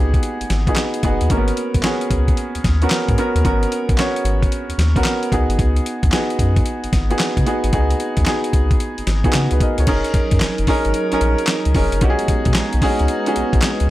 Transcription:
Already playing: C#2 B3 D#4 F#4 G4 G#4
0.14 kick, closed hi-hat
0.23 closed hi-hat
0.41 G#1, closed hi-hat
0.50 G#1, snare, closed hi-hat
0.67 B3 D#4 F#4 G#4, kick, closed hi-hat
0.76 snare, clap, closed hi-hat
0.94 closed hi-hat
1.03 F#1 B3 D#4 F#4 G#4, kick, closed hi-hat
1.21 D#2, closed hi-hat
1.30 G#1 A#3 C#4 F#4 A#4, kick, closed hi-hat
1.37 B3
1.48 closed hi-hat
1.57 closed hi-hat
1.74 B1, kick, closed hi-hat
1.83 B3 C#4 F#4 G#4, snare, clap, closed hi-hat
2.01 closed hi-hat
2.11 C#2, kick, closed hi-hat
2.28 kick, closed hi-hat
2.37 closed hi-hat
2.55 D#2, closed hi-hat
2.64 D#2, kick, snare, closed hi-hat
2.82 B3 C#4 F#4 A#4, closed hi-hat
2.90 snare, clap, closed hi-hat
3.08 G#2, kick, closed hi-hat
3.18 B3 C#4 F#4 A#4, closed hi-hat
3.35 D#2, closed hi-hat
3.45 G#1 B3 C#4 F#4 A#4, kick, closed hi-hat
3.63 closed hi-hat
3.72 closed hi-hat
3.89 B1, kick, closed hi-hat
3.98 B3 C#4 F#4 C#5, snare, clap, closed hi-hat
4.16 closed hi-hat
4.25 G#1, closed hi-hat
4.43 kick, closed hi-hat
4.52 closed hi-hat
4.69 D#2, closed hi-hat
4.78 D#2, snare, closed hi-hat
4.96 B3 C#4 F#4 A#4, kick, closed hi-hat
5.04 snare, clap, closed hi-hat
5.23 closed hi-hat
5.32 C#2 B3 D#4 F#4 G#4, kick, closed hi-hat
5.49 G#1, closed hi-hat
5.59 C#2, kick, closed hi-hat
5.76 closed hi-hat
5.86 closed hi-hat
6.03 D#2, kick, closed hi-hat
6.12 B3 D#4 F#4 G#4, snare, clap, closed hi-hat
6.30 closed hi-hat
6.39 F#2, kick, closed hi-hat
6.56 kick, closed hi-hat
6.66 closed hi-hat
6.84 G#1, closed hi-hat
6.93 G#1, kick, snare, closed hi-hat
7.10 B3 D#4 F#4 G#4, closed hi-hat
7.19 snare, clap, closed hi-hat
7.37 C#3, kick, closed hi-hat
7.46 B3 D#4 F#4 G#4, closed hi-hat
7.64 G#1, closed hi-hat
7.73 C#2 B3 D#4 F#4 G#4, kick, closed hi-hat
7.91 closed hi-hat
8.00 closed hi-hat
8.17 D#2, kick, closed hi-hat
8.26 B3 D#4 F#4 G#4, snare, clap, closed hi-hat
8.44 closed hi-hat
8.53 C#2, kick, closed hi-hat
8.71 kick, closed hi-hat
8.80 closed hi-hat
8.98 G#1, closed hi-hat
9.07 G#1, snare, closed hi-hat
9.24 B3 D#4 F#4 G#4, kick, closed hi-hat
9.33 C#3, snare, clap, closed hi-hat
9.51 C#2 F#4 B4, closed hi-hat
9.60 A#4 D#5, kick, closed hi-hat
9.78 C#2 G#4 C#5, closed hi-hat
9.87 F#1 F#3 C#4 D#4 G#4 A#4, kick, closed hi-hat, crash
10.04 closed hi-hat
10.14 F#2, kick, closed hi-hat
10.31 F#2, kick, closed hi-hat
10.40 F#1, snare, clap, closed hi-hat
10.58 F#1, closed hi-hat
10.67 C#4 D#4 G#4 A#4, kick, open hi-hat
10.85 G#1, closed hi-hat
10.94 closed hi-hat
11.12 A#1 C#4 D#4 G#4 A#4, closed hi-hat
11.21 A#1, closed hi-hat
11.38 closed hi-hat
11.47 snare, clap, closed hi-hat
11.65 C#2, closed hi-hat
11.74 F1 C#4 D#4 G#4 A#4, kick, open hi-hat
11.92 F#1, closed hi-hat
12.01 B1 G#3 B3 C#4 D#4 F#4 G4, kick, closed hi-hat
12.10 G#4
12.19 closed hi-hat
12.28 B2, kick, closed hi-hat
12.45 B2, kick, closed hi-hat
12.54 B1, snare, clap, closed hi-hat
12.73 B1, closed hi-hat
12.82 C#4 D#4 F#4 G#4, kick, open hi-hat
12.99 C#2, closed hi-hat
13.08 closed hi-hat
13.26 C#4 D#4 F#4 G#4, closed hi-hat
13.36 B1, closed hi-hat
13.53 B1, kick, closed hi-hat
13.62 snare, clap, closed hi-hat
13.80 C#2, closed hi-hat

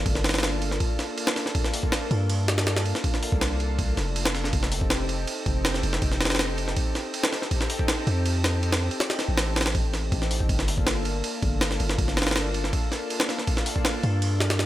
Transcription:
0.06 G1 A#3 D4 F4 A4, kick, ride
0.15 snare
0.24 snare, ride
0.29 snare, ride
0.34 snare, ride
0.38 snare, ride
0.43 snare, ride
0.62 ride
0.71 snare
0.80 kick, ride
0.99 A#3 D4 F4 A4, snare, ride
1.18 ride
1.27 snare
1.36 snare, ride
1.46 snare
1.55 A#3 D4 F4 A4, kick, ride
1.65 snare
1.74 open hi-hat
1.83 kick
1.92 snare, ride
2.11 G2, ride
2.30 ride
2.48 A#3 D4 F4 A4, snare, ride
2.58 snare, ride
2.67 snare, ride
2.76 snare, ride
2.85 ride
2.95 snare
3.04 A#3 D4 F4 A4, kick, ride
3.14 snare
3.23 open hi-hat
3.32 C2, kick
3.41 snare, ride
3.60 ride
3.79 kick, ride
3.97 F1, snare, ride
4.07 A#3 D4 F4 A4
4.16 ride
4.25 snare
4.35 snare, ride
4.44 snare
4.53 F1 C4 D#4 G4 A4, kick, ride
4.63 snare
4.72 open hi-hat
4.81 kick
4.90 snare, ride
5.09 ride
5.27 ride
5.46 F1 C4 D#4 G4 A4, kick, ride
5.65 snare, ride
5.74 snare
5.83 F1, ride
5.93 snare
6.02 F1 C4 D#4 G4 A4, kick, ride
6.12 snare
6.21 snare, ride
6.25 snare, ride
6.30 snare, ride
6.35 snare, ride
6.39 snare, ride
6.58 ride
6.68 snare
6.77 kick, ride
6.95 C4 D#4 G4 A4, snare, ride
7.14 ride
7.24 snare
7.33 snare, ride
7.42 snare
7.51 C4 D#4 G4 A4, kick, ride
7.61 snare
7.70 open hi-hat
7.79 kick
7.88 snare, ride
8.07 F2, ride
8.26 ride
8.44 C4 D#4 G4 A4, snare, ride
8.63 ride
8.72 snare, ride
8.91 ride
9.00 C4 D#4 G4 A4, snare, ride
9.10 snare, ride
9.19 snare, ride
9.28 A1
9.37 snare, ride
9.56 snare, ride
9.61 snare, ride
9.66 snare, ride
9.75 kick, ride
9.94 snare, ride
10.03 C4 D#4 G4 A4
10.12 A1, kick, ride
10.22 snare
10.31 open hi-hat
10.40 kick
10.49 G1 A#3 D4 F4 A4, kick, ride
10.59 snare
10.68 open hi-hat
10.78 kick
10.87 snare, ride
11.05 ride
11.24 ride
11.42 G1 A#3 D4 F4 A4, kick, ride
11.61 snare, ride
11.71 snare
11.80 G1, ride
11.89 snare
11.98 G1 A#3 D4 F4 A4, kick, ride
12.08 snare
12.17 snare, ride
12.22 snare, ride
12.27 snare, ride
12.31 snare, ride
12.36 snare, ride
12.54 ride
12.64 snare
12.73 kick, ride
12.91 A#3 D4 F4 A4, snare, ride
13.10 ride
13.20 snare
13.29 snare, ride
13.38 snare
13.47 A#3 D4 F4 A4, kick, ride
13.57 snare
13.66 open hi-hat
13.76 kick
13.85 snare, ride
14.03 G2, ride
14.22 ride
14.40 A#3 D4 F4 A4, snare, ride
14.50 snare, ride
14.59 snare, ride

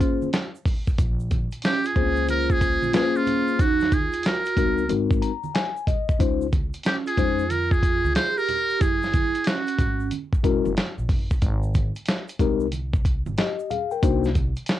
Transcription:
Already playing: A#3 C#4 F4 G#4 C5
0.01 kick, closed hi-hat, shaker
0.22 high conga, shaker
0.33 snare, closed hi-hat, shaker
0.55 shaker
0.65 kick, open hi-hat, low conga, shaker
0.87 kick, shaker
0.98 A#1, kick, closed hi-hat, shaker
1.20 shaker
1.31 kick, closed hi-hat, high conga, shaker
1.51 closed hi-hat, shaker
1.62 C#4 G4, snare, closed hi-hat, shaker
1.84 F4 G#4, closed hi-hat, shaker
1.96 C#2 A#3 C4 F4 G#4 C5, kick, closed hi-hat, low conga, shaker
2.03 C#4
2.16 shaker
2.28 F4 A#4, closed hi-hat, high conga, shaker
2.50 F4 G#4, kick, shaker
2.61 kick, closed hi-hat, shaker
2.83 A#1, high conga, shaker
2.93 A#3 C#4 F4 G#4 B4, snare, closed hi-hat, shaker
3.01 C5
3.15 C#4 F4, shaker
3.27 closed hi-hat, low conga, shaker
3.48 shaker
3.59 D#2 D#4 F#4, kick, closed hi-hat, shaker
3.80 snare, shaker
3.92 G#4, kick, closed hi-hat, high conga, shaker
4.13 closed hi-hat, shaker
4.23 F#4 A#4, snare, closed hi-hat, shaker
4.45 closed hi-hat, shaker
4.56 C#2 G#3 C4 D#4 F#4 A#4, kick, closed hi-hat, low conga, shaker
4.78 shaker
4.88 G#1 G#3 C4 D#4 F#4 A#4, closed hi-hat, high conga, shaker
5.11 kick, shaker
5.22 A#5, closed hi-hat, shaker
5.44 high conga, shaker
5.54 G#5, snare, closed hi-hat, shaker
5.77 shaker
5.87 D#5, kick, closed hi-hat, low conga, shaker
6.09 kick, shaker
6.19 C#2 G#3 C#4 D#4 F4 C5, kick, closed hi-hat, shaker
6.41 shaker
6.53 kick, closed hi-hat, high conga, shaker
6.74 closed hi-hat, shaker
6.83 C#4 G4, snare, closed hi-hat, shaker
7.06 F4 G#4, closed hi-hat, shaker
7.17 F2 G#3 C#4 D#4 F4 C5, kick, closed hi-hat, low conga, shaker
7.39 shaker
7.50 F4 A#4, closed hi-hat, high conga, shaker
7.70 F4 G#4, kick, shaker
7.83 kick, closed hi-hat, shaker
8.04 C#2, high conga, shaker
8.15 G#4 C5, snare, closed hi-hat, shaker
8.36 G4 A#4, shaker
8.49 closed hi-hat, low conga, shaker
8.70 shaker
8.79 F#1 E4 G#4, kick, closed hi-hat, shaker
9.02 snare, shaker
9.13 kick, closed hi-hat, high conga, shaker
9.35 closed hi-hat, shaker
9.44 C#4 F#4, snare, closed hi-hat, shaker
9.67 closed hi-hat, shaker
9.79 G#1, kick, closed hi-hat, low conga, shaker
10.00 shaker
10.11 closed hi-hat, high conga, shaker
10.33 kick, shaker
10.43 E1 G#3 C#4 E4 F#4 A#4, kick, closed hi-hat, shaker
10.65 F#1, high conga, shaker
10.77 snare, closed hi-hat, shaker
10.98 A#1, shaker
11.09 F#1, kick, open hi-hat, low conga, shaker
11.31 kick, shaker
11.42 G#1, kick, closed hi-hat, shaker
11.63 shaker
11.74 kick, closed hi-hat, high conga, shaker
11.95 closed hi-hat, shaker
12.05 snare, closed hi-hat, shaker
12.28 closed hi-hat, shaker
12.39 C2 G#3 C4 D#4 G4 A#4, kick, closed hi-hat, low conga, shaker
12.60 shaker
12.72 closed hi-hat, high conga, shaker
12.93 kick, shaker
13.05 kick, closed hi-hat, shaker
13.26 G#1, high conga, shaker
13.38 G4 D#5, snare, closed hi-hat, shaker
13.59 shaker
13.71 G#4 F5, closed hi-hat, low conga, shaker
13.91 A#4 G5, shaker
14.02 C2 A#3 D4 D#4 F#4 C5, kick, closed hi-hat, shaker
14.24 snare, shaker
14.35 kick, closed hi-hat, high conga, shaker
14.56 closed hi-hat, shaker
14.66 snare, closed hi-hat, shaker

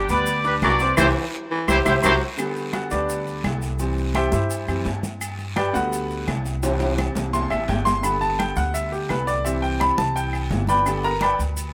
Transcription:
Already playing: G3
0.09 D2 B3 B4 D5 B5, short guiro, maracas
0.26 high conga, low agogo, long guiro, maracas
0.44 D4 G4 B4 D5 D6, high conga, maracas
0.62 C2 F#3 B4 D5, high conga, low timbale, low agogo, short guiro, claves, maracas
0.79 C4 C5 C6, high conga, short guiro, maracas
0.97 C2 E3 E4 G4 C5 E5, high conga, high timbale, long guiro, claves, maracas
1.51 E3
1.68 C2 E4 G4 C5 E5, high conga, high timbale, long guiro, claves, maracas
1.85 C2 E4 G4 C5 E5, high conga, high timbale, long guiro, claves, maracas
2.02 C2 F#3 E4 G4 C5 E5, high conga, high timbale, long guiro, claves, maracas
2.37 D3 G3 B3, high conga, low agogo, long guiro, claves, maracas
2.56 high conga, low agogo, maracas
2.73 F#4 F#5, high conga, low timbale, low agogo, short guiro, claves, maracas
2.91 D2 D4 G4 B4 D5, short guiro, maracas
3.09 high conga, low agogo, long guiro, maracas
3.27 high conga, maracas
3.44 C2, high conga, low timbale, low agogo, short guiro, claves, maracas
3.62 high conga, short guiro, maracas
3.79 E3 G3 C4, high conga, low agogo, long guiro, maracas
3.97 high conga, maracas
4.15 G4 C5 E5 G5, high conga, low timbale, low agogo, short guiro, claves, maracas
4.32 G2 E4 G4 C5 E5, high conga, short guiro, maracas
4.50 high conga, low agogo, long guiro, maracas
4.67 F#2 E3 G3 C4, high conga, low agogo, claves, maracas
4.85 G2, high conga, low timbale, low agogo, short guiro, maracas
5.03 high conga, short guiro, maracas
5.21 high conga, low agogo, long guiro, claves, maracas
5.39 high conga, low agogo, maracas
5.56 G4 B4 D5 G5, high conga, low timbale, low agogo, short guiro, claves, maracas
5.73 D2 D3 G3 B3 F#4 F#5, short guiro, maracas
5.92 high conga, low agogo, long guiro, maracas
6.10 high conga, maracas
6.28 C2, high conga, low timbale, low agogo, short guiro, claves, maracas
6.45 high conga, short guiro, maracas
6.63 E3 G3 C4, high conga, high timbale, low agogo, long guiro, maracas
6.80 high conga, high timbale, maracas
6.98 high conga, low agogo, short guiro, claves, maracas
7.15 C2, high conga, low timbale, short guiro, maracas
7.33 C6, high conga, low timbale, low agogo, long guiro, maracas
7.50 A1 E5, high conga, low timbale, low agogo, claves, maracas
7.68 G1 G5, high conga, low timbale, low agogo, short guiro, maracas
7.85 C6, high conga, low timbale, short guiro, maracas
8.03 D3 G3 B3 B5, high conga, low agogo, long guiro, claves, maracas
8.21 A5, high conga, low agogo, maracas
8.39 G5, high conga, low timbale, low agogo, short guiro, claves, maracas
8.56 D2 F#5, short guiro, maracas
8.74 E5, high conga, low agogo, long guiro, maracas
8.92 G4, high conga, maracas
9.09 C2 B4, high conga, low timbale, low agogo, short guiro, claves, maracas
9.27 D5, high conga, short guiro, maracas
9.44 E3 G3 C4 E5, high conga, low agogo, long guiro, maracas
9.62 G5, high conga, maracas
9.80 B5, high conga, low timbale, low agogo, short guiro, claves, maracas
9.98 C2 A5, high conga, short guiro, maracas
10.15 G5, high conga, low agogo, long guiro, maracas
10.33 high conga, low agogo, claves, maracas
10.50 G1, high conga, low timbale, low agogo, short guiro, maracas
10.67 B4 D5 G5 B5, high conga, short guiro, maracas
10.86 D3 G3 B3, high conga, low agogo, long guiro, claves, maracas
11.04 A#4 A#5, high conga, low agogo, maracas
11.21 B4 D5 G5 B5, high conga, low timbale, low agogo, short guiro, claves, maracas
11.39 D2, short guiro, maracas
11.57 high conga, low agogo, long guiro, maracas

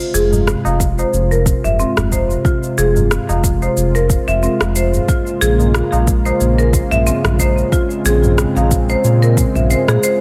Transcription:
Already playing: C3 G#3 F4
0.00 cabasa
0.14 F1 G#4, cabasa
0.32 tabla tin, tabla ge, cabasa
0.47 cross-stick, cabasa
0.65 F1 F5, tabla na, cabasa
0.80 kick, tabla tin, cabasa
0.98 C5, tabla na, cabasa
1.13 F1, cabasa
1.31 A#4, cabasa
1.46 kick, cabasa
1.64 F1 E5, tabla ge, cabasa
1.79 C4, cabasa
1.97 F1, cross-stick, tabla ge, cabasa
2.12 C5, kick, tabla na, tabla tin, cabasa
2.30 cabasa
2.45 F4, kick, cabasa
2.63 tabla tin, cabasa
2.78 F1 G#4, cabasa
2.96 tabla tin, tabla ge, cabasa
3.11 cross-stick, cabasa
3.29 F1 F5, tabla na, cabasa
3.44 kick, cabasa
3.62 C5, tabla na, cabasa
3.77 F1, cabasa
3.95 A#4, cabasa
4.10 kick, tabla tin, cabasa
4.28 F1 E5, cabasa
4.43 C4, cabasa
4.61 F1, cross-stick, tabla na, cabasa
4.76 C5, tabla tin, cabasa
4.94 tabla ge, cabasa
5.08 C#3 A#3 F4, kick, cabasa
5.26 tabla tin, cabasa
5.41 A#1 G#4, cabasa
5.59 tabla tin, tabla ge, cabasa
5.74 cross-stick, cabasa
5.92 A#1 F5, tabla na, cabasa
6.07 kick, tabla tin, cabasa
6.25 C5, tabla na, cabasa
6.41 A#1, cabasa
6.58 A#4, cabasa
6.73 kick, cabasa
6.91 A#1 E5, tabla ge, cabasa
7.07 C4, cabasa
7.24 A#1, cross-stick, tabla ge, cabasa
7.39 C5, kick, tabla na, tabla tin, cabasa
7.58 cabasa
7.72 C4 F4, kick, cabasa
7.90 tabla tin, cabasa
8.05 A#1 G#4, cabasa
8.23 tabla tin, tabla ge, cabasa
8.38 cross-stick, cabasa
8.56 A#1 F5, tabla na, cabasa
8.71 kick, cabasa
8.89 C5, tabla na, cabasa
9.04 A#2, cabasa
9.22 A#4, cabasa
9.37 kick, tabla tin, cabasa
9.55 A#1 E5, tabla ge, cabasa
9.70 C5, cabasa
9.88 A#2 G#4, cross-stick, tabla na, cabasa
10.03 C5, tabla tin, cabasa

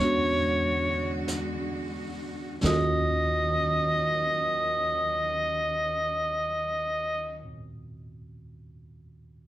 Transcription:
Already playing: E2 G#3 B3 C#4 C#5
0.00 D3 G#3 D4 F#4
1.28 brush sweep, snare, hi-hat pedal
2.61 D#2 D#3 F#3 C#4 F4, snare
2.66 F#4 D#5

